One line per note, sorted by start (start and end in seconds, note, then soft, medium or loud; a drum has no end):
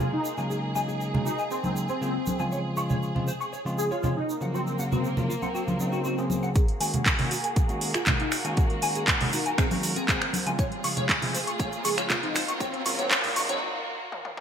0.00 0.14 C#3 medium
0.00 0.14 F#3 medium
0.00 0.15 G#3 medium
0.00 2.48 A#3 medium
0.00 0.15 A#3 medium
0.00 0.15 F4 medium
0.00 4.25 G#4 medium
0.00 shaker soft
0.13 0.29 D#4 medium
0.25 shaker medium
0.38 0.73 C#3 medium
0.38 0.73 F#3 medium
0.38 0.73 G#3 medium
0.38 0.73 A#3 medium
0.38 0.73 D#4 medium
0.38 0.42 G#5 medium
0.38 shaker soft
0.50 0.57 G#4 medium
0.50 shaker soft
0.75 1.10 C#3 medium
0.75 1.11 F#3 medium
0.75 1.11 G#3 medium
0.75 1.11 A#3 medium
0.75 1.11 D#4 medium
0.75 0.79 G#5 medium
0.75 shaker medium
0.88 0.95 G#4 medium
0.88 shaker soft
1.01 shaker soft
1.13 1.27 C#3 medium
1.13 1.27 F#3 medium
1.13 1.28 G#3 medium
1.13 1.28 A#3 medium
1.13 1.28 D#4 medium
1.13 low conga medium
1.26 1.42 D#4 medium
1.26 1.30 F#4 medium
1.26 shaker medium
1.39 1.43 G#5 medium
1.39 shaker soft
1.51 1.59 C4 medium
1.51 1.58 G#4 medium
1.51 shaker soft
1.63 1.86 C#3 medium
1.63 1.86 F#3 medium
1.63 1.86 G#3 medium
1.63 1.87 A#3 medium
1.63 1.72 C4 medium
1.63 1.87 D#4 medium
1.63 high conga medium
1.63 shaker soft
1.76 shaker medium
1.89 2.40 C4 medium
1.89 1.95 G#4 medium
1.89 shaker soft
2.01 2.16 C#3 medium
2.01 2.16 F#3 medium
2.01 2.16 G#3 medium
2.01 2.16 A#3 medium
2.01 2.16 F4 medium
2.01 2.11 G#4 medium
2.01 shaker soft
2.27 high conga medium
2.27 shaker medium
2.39 2.74 C#3 medium
2.39 2.74 F3 medium
2.39 2.74 G#3 medium
2.39 2.75 C4 medium
2.39 2.75 F4 medium
2.39 2.44 G#5 medium
2.39 shaker soft
2.52 2.59 C#5 medium
2.52 shaker soft
2.77 3.12 C#3 medium
2.77 3.12 F3 medium
2.77 3.12 G#3 medium
2.77 3.13 F4 medium
2.77 2.81 C#6 medium
2.77 shaker medium
2.90 2.96 C#5 medium
2.90 low conga medium
2.90 shaker soft
3.03 shaker soft
3.15 3.29 C#3 medium
3.15 3.29 F3 medium
3.15 3.29 G#3 medium
3.15 3.29 C4 medium
3.15 3.29 F4 medium
3.15 low conga medium
3.28 3.32 C5 medium
3.28 shaker medium
3.41 3.44 C#6 medium
3.41 shaker soft
3.53 3.59 C#5 medium
3.53 shaker soft
3.65 3.88 C#3 medium
3.65 3.88 F3 medium
3.65 3.88 G#3 medium
3.65 3.88 C4 medium
3.65 3.88 F4 medium
3.65 shaker soft
3.78 3.89 G#4 medium
3.78 shaker medium
3.91 4.07 F4 medium
3.91 3.97 C#5 medium
3.91 shaker soft
4.03 4.17 C#3 medium
4.03 4.18 F3 medium
4.03 4.18 G#3 medium
4.03 4.18 C4 medium
4.03 4.18 G#4 medium
4.03 4.13 C#5 medium
4.03 low conga medium
4.03 shaker soft
4.16 4.32 D#4 medium
4.29 6.53 A#3 medium
4.29 shaker medium
4.41 4.76 C#3 medium
4.41 4.76 F3 medium
4.41 4.76 F#3 medium
4.41 4.76 A#3 medium
4.41 4.45 F#5 medium
4.41 shaker soft
4.54 4.62 C4 medium
4.54 4.60 F#4 medium
4.54 shaker soft
4.67 4.75 C4 medium
4.67 shaker soft
4.79 5.14 C#3 medium
4.79 5.14 F#3 medium
4.79 5.14 A#3 medium
4.79 4.83 F#5 medium
4.79 shaker medium
4.92 5.08 C4 medium
4.92 4.98 F#4 medium
4.92 low conga medium
4.92 shaker soft
5.04 shaker medium
5.17 5.31 C#3 medium
5.17 5.31 F3 medium
5.17 5.31 F#3 medium
5.17 5.31 A#3 medium
5.17 5.31 F4 medium
5.17 low conga medium
5.17 shaker soft
5.29 5.33 F4 medium
5.29 shaker medium
5.42 5.50 C4 medium
5.42 5.46 F#5 medium
5.42 high conga medium
5.42 shaker soft
5.54 5.63 C4 medium
5.54 5.61 F#4 medium
5.54 shaker medium
5.67 5.77 C#3 medium
5.67 5.77 F3 medium
5.67 5.78 F#3 medium
5.67 5.78 A#3 medium
5.67 5.78 F4 medium
5.67 high conga medium
5.67 shaker soft
5.80 6.15 C#3 medium
5.80 6.15 F#3 medium
5.80 6.15 A#3 medium
5.80 6.51 C4 medium
5.80 6.15 D#4 medium
5.80 shaker medium
5.93 5.99 F#4 medium
5.93 shaker soft
6.05 6.15 F#4 medium
6.05 shaker medium
6.18 6.54 C#3 medium
6.18 6.54 F#3 medium
6.18 6.54 A#3 medium
6.18 6.54 G#4 medium
6.18 shaker soft
6.30 high conga medium
6.30 shaker medium
6.43 6.47 F#5 medium
6.43 shaker soft
6.55 10.55 A#3 medium
6.55 10.55 F#4 medium
6.55 6.62 G#4 medium
6.55 8.55 G#4 medium
6.55 kick loud
6.55 closed hi-hat medium
6.55 riser medium
6.55 shaker soft
6.68 closed hi-hat soft
6.80 7.16 D#3 medium
6.80 7.16 G#3 medium
6.80 7.16 A#3 medium
6.80 7.16 C#4 medium
6.80 7.16 F#4 medium
6.80 6.85 G#5 loud
6.80 open hi-hat loud
6.80 shaker medium
6.93 7.00 G#4 medium
6.93 closed hi-hat soft
6.93 low conga medium
6.93 shaker soft
7.06 kick medium
7.06 clap loud
7.06 closed hi-hat medium
7.06 shaker medium
7.19 7.33 D#3 medium
7.19 7.33 G#3 medium
7.19 7.33 A#3 medium
7.19 7.33 C#4 medium
7.19 7.33 F#4 medium
7.19 open hi-hat medium
7.19 low conga medium
7.31 7.35 F#4 medium
7.31 open hi-hat loud
7.31 shaker medium
7.44 7.48 G#5 medium
7.44 closed hi-hat soft
7.44 shaker soft
7.56 7.63 G#4 medium
7.56 kick loud
7.56 closed hi-hat soft
7.56 shaker medium
7.69 7.91 D#3 medium
7.69 7.92 G#3 medium
7.69 7.92 A#3 medium
7.69 7.92 C#4 medium
7.69 7.92 F#4 medium
7.69 closed hi-hat soft
7.69 shaker soft
7.81 7.92 G#4 medium
7.81 open hi-hat loud
7.81 shaker medium
7.94 8.10 F4 medium
7.94 8.01 G#4 medium
7.94 finger snap medium
7.94 closed hi-hat soft
7.94 shaker soft
8.06 8.21 D#3 medium
8.06 8.21 G#3 medium
8.06 8.21 A#3 medium
8.06 8.21 C#4 medium
8.06 8.16 G#4 medium
8.06 8.21 G#4 medium
8.06 kick loud
8.06 clap loud
8.06 closed hi-hat medium
8.06 low conga medium
8.06 shaker medium
8.20 8.36 D#4 medium
8.20 closed hi-hat soft
8.32 finger snap medium
8.32 open hi-hat medium
8.32 shaker medium
8.44 8.79 D#3 medium
8.44 8.79 G#3 medium
8.44 8.80 A#3 medium
8.44 8.80 C#4 medium
8.44 8.80 F#4 medium
8.44 8.49 G#5 medium
8.44 closed hi-hat soft
8.44 shaker soft
8.57 8.64 G#4 medium
8.57 10.57 A#4 medium
8.57 kick loud
8.57 closed hi-hat medium
8.57 shaker soft
8.70 closed hi-hat soft
8.82 9.17 D#3 medium
8.82 9.17 G#3 medium
8.82 9.18 A#3 medium
8.82 9.18 C#4 medium
8.82 9.18 F#4 medium
8.82 8.86 G#5 loud
8.82 open hi-hat loud
8.82 shaker medium
8.95 9.02 G#4 medium
8.95 closed hi-hat soft
8.95 shaker soft
9.08 kick loud
9.08 clap loud
9.08 closed hi-hat medium
9.08 shaker medium
9.20 9.34 D#3 medium
9.20 9.34 G#3 medium
9.20 9.34 A#3 medium
9.20 9.34 C#4 medium
9.20 9.35 F#4 medium
9.20 open hi-hat medium
9.20 low conga medium
9.33 9.49 D#4 medium
9.33 9.37 F#4 medium
9.33 open hi-hat loud
9.33 shaker medium
9.46 9.50 G#5 medium
9.46 closed hi-hat medium
9.46 shaker soft
9.58 9.66 C4 medium
9.58 9.65 G#4 medium
9.58 finger snap medium
9.58 kick loud
9.58 closed hi-hat soft
9.58 shaker medium
9.71 9.93 D#3 medium
9.71 9.93 G#3 medium
9.71 9.93 A#3 medium
9.71 9.79 C4 medium
9.71 9.94 C#4 medium
9.71 9.94 F#4 medium
9.71 open hi-hat medium
9.71 high conga medium
9.71 shaker soft
9.83 open hi-hat loud
9.83 shaker medium
9.96 10.46 C4 medium
9.96 10.02 G#4 medium
9.96 closed hi-hat medium
9.96 shaker soft
10.08 10.23 D#3 medium
10.08 10.23 G#3 medium
10.08 10.23 A#3 medium
10.08 10.23 C#4 medium
10.08 10.18 G#4 medium
10.08 10.23 G#4 medium
10.08 kick loud
10.08 clap loud
10.08 closed hi-hat medium
10.08 shaker medium
10.22 finger snap medium
10.22 closed hi-hat soft
10.33 open hi-hat loud
10.33 high conga medium
10.33 shaker medium
10.46 10.59 C#3 medium
10.46 10.59 F3 medium
10.46 10.59 G#3 medium
10.46 10.59 C4 medium
10.46 10.59 F4 medium
10.46 10.50 G#5 medium
10.46 closed hi-hat soft
10.46 shaker soft
10.59 14.40 F4 medium
10.59 12.34 G#4 medium
10.59 10.65 C#5 medium
10.59 kick loud
10.59 closed hi-hat soft
10.59 shaker medium
10.72 closed hi-hat soft
10.83 11.19 C#3 medium
10.83 11.19 F3 medium
10.83 11.19 G#3 medium
10.83 11.19 F4 medium
10.83 10.88 C#6 medium
10.83 open hi-hat loud
10.83 shaker medium
10.97 11.03 C#5 medium
10.97 closed hi-hat soft
10.97 low conga medium
10.97 shaker soft
11.09 kick loud
11.09 clap loud
11.09 closed hi-hat medium
11.09 shaker soft
11.22 11.36 C#3 medium
11.22 11.36 F3 medium
11.22 11.36 G#3 medium
11.22 11.36 C4 medium
11.22 11.36 F4 medium
11.22 open hi-hat medium
11.22 low conga medium
11.34 11.38 C5 medium
11.34 open hi-hat loud
11.34 shaker medium
11.47 11.51 C#6 medium
11.47 closed hi-hat soft
11.47 shaker soft
11.59 11.66 C#5 medium
11.59 kick loud
11.59 closed hi-hat soft
11.59 shaker soft
11.73 closed hi-hat soft
11.73 shaker soft
11.84 12.20 C#3 medium
11.84 12.20 F3 medium
11.84 12.20 G#3 medium
11.84 12.20 F4 medium
11.84 11.95 G#4 medium
11.84 11.89 C#6 medium
11.84 open hi-hat loud
11.84 shaker medium
11.98 12.14 F4 medium
11.98 12.04 C#5 medium
11.98 finger snap medium
11.98 closed hi-hat soft
11.98 shaker soft
12.10 kick loud
12.10 clap loud
12.10 closed hi-hat medium
12.10 low conga loud
12.10 shaker soft
12.22 12.36 C#3 medium
12.22 12.37 F3 medium
12.22 12.37 G#3 medium
12.22 12.37 C4 medium
12.22 12.39 D#4 medium
12.22 12.37 F4 medium
12.22 closed hi-hat soft
12.35 14.40 A#3 medium
12.35 14.40 F#4 medium
12.35 12.39 C5 medium
12.35 finger snap medium
12.35 open hi-hat loud
12.35 shaker medium
12.48 12.52 C#6 medium
12.48 closed hi-hat soft
12.48 shaker soft
12.60 12.69 C4 medium
12.60 12.67 C#5 medium
12.60 kick loud
12.60 closed hi-hat medium
12.60 shaker soft
12.74 12.81 C4 medium
12.74 closed hi-hat soft
12.85 13.09 C#3 medium
12.85 13.09 F3 medium
12.85 13.09 G#3 medium
12.85 13.09 C4 medium
12.85 13.09 F4 medium
12.85 12.90 C#6 loud
12.85 open hi-hat loud
12.85 shaker medium
12.98 13.14 C4 medium
12.98 13.05 C#5 loud
12.98 closed hi-hat medium
12.98 shaker soft
13.11 13.18 C#5 medium
13.11 kick loud
13.11 clap loud
13.11 closed hi-hat soft
13.11 shaker soft
13.24 open hi-hat medium
13.24 low conga medium
13.36 13.59 C#3 medium
13.36 13.59 F3 medium
13.36 13.59 G#3 medium
13.36 13.59 C4 medium
13.36 13.60 F4 medium
13.36 13.40 C#6 loud
13.36 open hi-hat loud
13.36 shaker medium
13.48 13.57 C4 medium
13.48 13.55 C#5 loud
13.48 closed hi-hat soft
13.48 high conga medium
13.48 shaker soft
14.12 high tom medium
14.25 high tom medium
14.37 mid tom medium